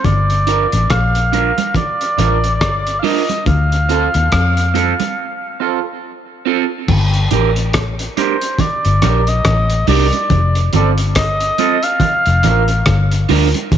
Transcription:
0.05 0.65 G1 loud
0.05 0.92 D5 loud
0.05 kick loud
0.05 closed hi-hat medium
0.05 low conga medium
0.30 closed hi-hat soft
0.47 0.65 D4 medium
0.47 0.66 F4 medium
0.47 0.66 A#4 medium
0.47 closed hi-hat medium
0.72 0.88 A1 medium
0.72 closed hi-hat medium
0.90 1.51 A#1 medium
0.90 1.76 F5 loud
0.90 kick loud
0.90 cross-stick loud
0.90 closed hi-hat medium
1.15 closed hi-hat medium
1.32 1.51 D4 medium
1.32 1.51 F4 medium
1.32 1.52 A#4 medium
1.32 closed hi-hat medium
1.32 high conga soft
1.57 muted clean electric guitar stroke soft
1.57 closed hi-hat medium
1.57 high conga medium
1.75 3.01 D5 loud
1.75 kick loud
1.75 closed hi-hat medium
1.75 low conga medium
2.01 closed hi-hat soft
2.18 2.62 A1 medium
2.18 2.36 D4 medium
2.18 2.36 F4 medium
2.18 2.37 A#4 medium
2.18 closed hi-hat medium
2.18 high conga soft
2.18 low conga medium
2.44 closed hi-hat medium
2.61 2.99 G1 medium
2.61 kick loud
2.61 cross-stick loud
2.61 closed hi-hat medium
2.87 closed hi-hat medium
3.00 3.21 D4 medium
3.00 3.06 F5 medium
3.04 3.22 F4 medium
3.04 3.22 A#4 loud
3.04 3.47 D#5 medium
3.04 open hi-hat medium
3.04 high conga medium
3.29 closed hi-hat medium
3.29 high conga medium
3.46 4.07 D2 loud
3.46 5.99 F5 medium
3.46 kick loud
3.46 closed hi-hat medium
3.46 low conga medium
3.72 closed hi-hat soft
3.89 4.07 C4 medium
3.89 4.07 F4 medium
3.89 4.08 A4 loud
3.89 closed hi-hat medium
4.14 4.30 D#2 medium
4.14 closed hi-hat medium
4.32 4.93 F2 medium
4.32 kick loud
4.32 cross-stick loud
4.32 closed hi-hat loud
4.57 closed hi-hat medium
4.74 4.92 C4 medium
4.74 4.93 F4 medium
4.74 4.93 A4 loud
4.74 closed hi-hat medium
4.74 high conga medium
5.00 muted clean electric guitar stroke soft
5.00 closed hi-hat medium
5.00 high conga medium
5.60 5.78 C4 medium
5.60 5.79 F4 medium
5.60 5.79 A4 medium
6.45 6.63 C4 medium
6.45 6.64 F4 medium
6.45 6.64 A4 medium
6.88 7.26 G1 loud
6.88 kick loud
6.88 crash loud
6.88 low conga medium
7.14 closed hi-hat medium
7.31 8.07 A1 medium
7.31 7.49 D4 medium
7.31 7.50 G4 medium
7.31 7.50 A#4 medium
7.31 closed hi-hat medium
7.31 low conga medium
7.56 closed hi-hat medium
7.73 kick loud
7.73 cross-stick loud
7.73 closed hi-hat loud
7.99 closed hi-hat medium
8.17 8.35 D4 medium
8.17 8.35 G4 medium
8.17 8.36 A#4 medium
8.17 8.62 C5 medium
8.17 closed hi-hat medium
8.17 high conga medium
8.41 closed hi-hat medium
8.59 9.30 D5 loud
8.59 kick loud
8.59 closed hi-hat medium
8.59 low conga medium
8.85 9.01 G1 medium
8.85 closed hi-hat soft
9.02 9.40 A#1 medium
9.02 9.20 D4 medium
9.02 9.21 G4 medium
9.02 9.21 A#4 medium
9.02 cross-stick medium
9.02 closed hi-hat medium
9.02 low conga medium
9.27 9.88 D#5 loud
9.27 closed hi-hat medium
9.45 9.83 A1 medium
9.45 kick loud
9.45 cross-stick loud
9.45 closed hi-hat loud
9.70 closed hi-hat medium
9.87 10.10 C2 medium
9.87 10.05 D4 medium
9.87 10.06 G4 medium
9.87 10.07 A#4 medium
9.87 10.70 D5 loud
9.87 open hi-hat medium
9.87 high conga medium
10.12 closed hi-hat medium
10.12 high conga soft
10.30 10.68 F1 loud
10.30 kick loud
10.30 closed hi-hat medium
10.30 low conga medium
10.55 closed hi-hat medium
10.73 11.49 G1 medium
10.73 10.91 C4 medium
10.73 10.92 F4 medium
10.73 10.92 A4 medium
10.73 10.91 D5 medium
10.73 closed hi-hat medium
10.73 low conga medium
10.98 closed hi-hat medium
11.15 11.86 D#5 loud
11.15 kick loud
11.15 cross-stick loud
11.15 closed hi-hat loud
11.40 closed hi-hat medium
11.58 11.76 C4 medium
11.58 11.77 F4 medium
11.58 11.77 A4 medium
11.58 closed hi-hat medium
11.58 high conga soft
11.83 13.30 F5 loud
11.83 closed hi-hat medium
12.00 kick loud
12.00 closed hi-hat medium
12.00 low conga medium
12.26 12.42 F1 loud
12.26 closed hi-hat medium
12.43 12.82 A1 loud
12.43 12.62 D4 medium
12.43 12.62 F4 medium
12.43 12.63 A#4 medium
12.43 closed hi-hat medium
12.43 low conga medium
12.68 closed hi-hat medium
12.86 13.25 G1 medium
12.86 kick loud
12.86 cross-stick loud
12.86 closed hi-hat medium
13.11 closed hi-hat medium
13.29 13.52 D2 medium
13.29 13.47 D4 loud
13.29 13.48 F4 loud
13.29 13.48 A#4 loud
13.29 open hi-hat medium
13.29 high conga medium
13.54 closed hi-hat medium
13.54 high conga soft
13.72 13.78 G1 loud
13.72 kick loud
13.72 closed hi-hat medium
13.72 low conga medium

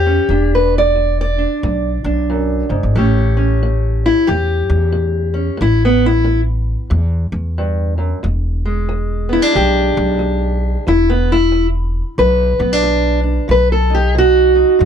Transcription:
0.00 0.17 E2 loud
0.00 0.25 A2 medium
0.00 0.54 G4 loud
0.06 0.28 C#4 soft
0.29 1.44 E1 medium
0.29 0.91 E2 medium
0.29 1.37 D4 soft
0.55 0.76 B4 medium
0.78 1.20 D5 medium
0.96 1.57 E2 medium
1.21 2.52 D5 loud
1.38 2.04 D4 soft
1.63 1.98 B1 loud
1.63 2.24 E2 medium
2.04 2.61 B1 medium
2.04 2.93 D4 soft
2.30 2.69 F#2 medium
2.69 2.81 F#1 medium
2.69 2.95 G#2 medium
2.83 2.94 G#1 medium
2.96 4.09 A1 medium
2.96 3.56 A2 medium
2.96 5.57 A3 medium
2.96 3.36 C#4 soft
2.96 4.27 G4 soft
2.96 4.05 C#5 soft
3.37 5.33 C#4 soft
3.63 4.23 A2 medium
4.06 4.27 E4 loud
4.27 4.63 E2 loud
4.27 4.88 A2 medium
4.27 5.59 G4 loud
4.70 5.48 E2 loud
4.92 5.54 A2 medium
5.34 5.56 C#4 soft
5.57 6.74 A1 medium
5.57 6.19 A2 medium
5.62 5.82 E4 medium
5.85 6.05 B3 medium
6.06 6.40 E4 loud
6.24 6.86 A2 medium
6.90 7.26 E2 loud
6.90 7.51 A2 medium
7.32 8.11 E2 loud
7.58 7.97 G2 medium
7.98 8.23 F#2 medium
8.23 9.37 E1 medium
8.23 8.84 E2 medium
8.65 10.84 G#3 soft
8.89 9.49 E2 medium
9.29 9.42 B3 soft
9.29 9.55 E4 medium
9.42 10.86 D4 soft
9.54 9.90 B1 medium
9.54 10.15 E2 medium
9.54 10.87 G4 loud
9.97 10.75 B1 loud
10.19 10.80 E2 medium
10.87 12.00 E1 medium
10.87 11.47 E2 medium
10.87 11.09 E4 medium
11.10 11.31 B3 medium
11.32 11.66 E4 loud
11.52 12.12 E2 medium
12.18 12.53 B1 loud
12.18 12.79 E2 medium
12.18 13.49 B4 loud
12.59 13.38 B1 medium
12.59 12.73 B3 medium
12.73 13.22 D4 soft
12.83 13.44 E2 medium
13.23 13.46 D4 soft
13.48 14.62 B1 medium
13.48 14.09 B2 medium
13.48 13.72 B4 loud
13.72 13.93 A4 medium
13.90 14.54 D#4 soft
13.94 14.15 G4 loud
14.15 14.75 B2 medium
14.15 14.82 F#4 loud
14.55 14.85 D#4 soft
14.79 14.85 F#2 loud
14.79 14.85 B2 medium

